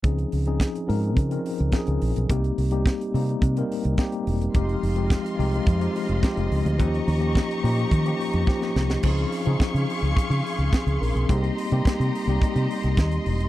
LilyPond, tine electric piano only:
\new Staff \with { instrumentName = "Tine electric piano" } { \time 4/4 \key des \lydian \tempo 4 = 107 << { r1 | r1 | r1 | r1 |
r2. <c' aes'>8 <des' bes'>16 <c' aes'>16~ | <c' aes'>16 r2. r8. | } \\ { <f c' des' ees' aes'>8 r16 <f c' des' ees' aes'>8 r16 <f c' des' ees' bes'>8 r16 <f c' des' ees' bes'>8 r16 <f c' des' ees' aes'>8. r16 | <g bes c' ees' g'>8 r16 <g bes c' ees' g'>8 r16 <g bes c' ees' g'>8 r16 <g bes c' ees' bes'>8 r16 <g bes c' ees' g'>8. r16 | <f aes c' ees' g'>8 r16 <f aes c' ees' g'>8 r16 <f aes c' ees' g'>8 r16 <f aes c' ees' g'>8 r16 <f aes c' ees' g'>8. r16 | <f bes des' ees' g'>8 r16 <f bes des' ees' g'>8 r16 <f bes des' ees' g'>8 r16 <f bes des' ees' g'>8 r16 <f bes des' ees' g'>8. r16 |
<f c' des' ees' aes'>8 r16 <f c' des' ees' aes'>4~ <f c' des' ees' aes'>16 r2 | <g bes c' ees' g'>8 r16 <g bes c' ees' g'>8. r16 <g bes c' ees' g'>4~ <g bes c' ees' g'>16 r4 | } >> }